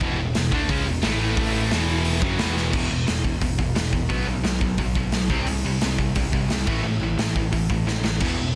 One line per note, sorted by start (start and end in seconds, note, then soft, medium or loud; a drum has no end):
0.01 0.17 E1 loud
0.01 0.18 E2 loud
0.01 0.18 B2 loud
0.01 0.19 E3 loud
0.01 kick loud
0.19 0.34 E1 medium
0.19 0.32 E2 medium
0.19 0.32 B2 medium
0.35 0.51 E1 medium
0.35 0.49 E2 medium
0.35 0.50 B2 medium
0.35 snare loud
0.35 open hi-hat medium
0.52 0.68 D2 loud
0.52 0.69 D3 loud
0.52 0.69 A3 loud
0.52 0.70 D4 loud
0.52 kick loud
0.69 0.85 C#2 medium
0.69 0.86 C#3 medium
0.69 0.86 G#3 loud
0.69 0.86 C#4 loud
0.69 kick loud
0.69 open hi-hat medium
0.86 1.02 E1 medium
0.86 1.00 E2 medium
0.86 1.01 B2 medium
1.02 1.35 A1 loud
1.02 1.36 A2 loud
1.02 1.37 E3 loud
1.02 1.37 A3 loud
1.02 snare loud
1.02 open hi-hat medium
1.37 1.69 A1 loud
1.37 1.71 A2 loud
1.37 1.71 E3 loud
1.37 1.71 A3 loud
1.37 kick loud
1.37 open hi-hat medium
1.71 2.19 E1 loud
1.71 2.21 E2 medium
1.71 2.22 B2 loud
1.71 2.22 E3 loud
1.71 snare loud
1.71 open hi-hat medium
2.05 open hi-hat medium
2.22 2.38 F#1 medium
2.22 2.38 F#2 loud
2.22 2.38 C#3 loud
2.22 2.39 F#3 loud
2.22 kick loud
2.38 2.72 E1 loud
2.38 2.72 E2 loud
2.38 2.73 B2 loud
2.38 2.73 E3 loud
2.38 snare loud
2.38 open hi-hat medium
2.57 snare medium
2.73 2.87 E1 loud
2.73 2.89 E2 medium
2.73 2.89 B2 medium
2.73 2.90 E3 loud
2.73 kick loud
2.73 crash loud
2.90 3.05 E1 medium
2.90 3.05 E2 medium
2.90 3.06 B2 medium
3.07 3.22 E1 medium
3.07 3.22 E2 medium
3.07 3.23 B2 loud
3.07 snare medium
3.07 open hi-hat medium
3.24 3.39 E1 medium
3.24 3.40 E2 medium
3.24 3.40 B2 medium
3.24 kick medium
3.41 3.55 E1 medium
3.41 3.57 E2 medium
3.41 3.57 B2 medium
3.41 kick loud
3.41 open hi-hat medium
3.58 3.73 E1 medium
3.58 3.74 E2 medium
3.58 3.74 B2 medium
3.58 kick medium
3.75 3.90 E1 loud
3.75 3.91 E2 medium
3.75 3.91 B2 medium
3.75 snare loud
3.75 open hi-hat medium
3.93 4.07 E1 medium
3.93 4.08 E2 medium
3.93 4.08 B2 medium
3.93 kick medium
4.09 4.24 B1 loud
4.09 4.26 B2 medium
4.09 4.26 F#3 medium
4.09 4.26 B3 loud
4.09 kick loud
4.09 open hi-hat medium
4.26 4.41 B1 medium
4.26 4.42 B2 medium
4.26 4.42 F#3 medium
4.43 4.58 B1 medium
4.43 4.59 B2 medium
4.43 4.60 F#3 medium
4.43 snare loud
4.43 open hi-hat medium
4.61 4.76 B1 medium
4.61 4.77 B2 medium
4.61 4.77 F#3 medium
4.61 kick medium
4.77 4.92 B1 medium
4.77 4.94 B2 medium
4.77 4.94 F#3 medium
4.77 kick loud
4.77 open hi-hat soft
4.95 5.10 B1 medium
4.95 5.11 B2 medium
4.95 5.11 F#3 loud
4.95 kick medium
5.12 5.27 B1 medium
5.12 5.29 B2 medium
5.12 5.29 F#3 medium
5.12 snare loud
5.12 open hi-hat medium
5.30 5.44 C2 medium
5.30 5.46 C3 loud
5.30 5.46 G3 medium
5.30 5.47 C4 medium
5.30 kick medium
5.46 5.61 C2 loud
5.46 5.63 C3 medium
5.46 5.63 G3 medium
5.46 open hi-hat medium
5.65 5.79 C2 medium
5.65 5.80 C3 medium
5.65 5.80 G3 medium
5.81 5.96 C2 loud
5.81 5.97 C3 medium
5.81 5.97 G3 medium
5.81 snare loud
5.81 open hi-hat medium
5.98 6.12 C2 medium
5.98 6.14 C3 medium
5.98 6.14 G3 medium
5.98 kick medium
6.15 6.29 C2 medium
6.15 6.31 C3 medium
6.15 6.32 G3 medium
6.15 kick loud
6.15 open hi-hat medium
6.32 6.47 C2 medium
6.32 6.49 C3 medium
6.32 6.49 G3 medium
6.32 kick medium
6.50 6.65 C2 loud
6.50 6.66 C3 medium
6.50 6.66 G3 medium
6.50 snare loud
6.50 open hi-hat medium
6.67 6.81 A1 loud
6.67 6.83 A2 medium
6.67 6.84 E3 medium
6.67 6.84 A3 medium
6.67 kick medium
6.67 crash medium
6.84 6.98 A1 loud
6.84 7.00 A2 medium
6.84 7.00 E3 medium
7.00 7.15 A1 medium
7.00 7.18 A2 medium
7.00 7.18 E3 medium
7.18 7.32 A1 medium
7.18 7.34 A2 medium
7.18 7.35 E3 medium
7.18 snare loud
7.18 open hi-hat medium
7.35 7.49 A1 medium
7.35 7.52 A2 medium
7.35 7.52 E3 medium
7.35 kick medium
7.52 7.67 A1 medium
7.52 7.68 A2 medium
7.52 7.68 E3 medium
7.52 kick loud
7.52 open hi-hat medium
7.69 7.83 A1 medium
7.69 7.85 A2 medium
7.69 7.86 E3 medium
7.69 kick loud
7.86 8.01 A1 medium
7.86 8.02 A2 medium
7.86 8.03 E3 medium
7.86 snare medium
8.04 8.18 A1 medium
8.04 8.19 A2 medium
8.04 8.20 E3 medium
8.04 snare medium
8.20 8.35 E1 medium
8.20 8.37 E2 medium
8.20 8.38 B2 medium
8.20 8.38 E3 loud
8.20 kick loud
8.20 crash loud
8.38 8.53 E1 medium
8.38 8.54 E2 medium
8.38 8.54 B2 medium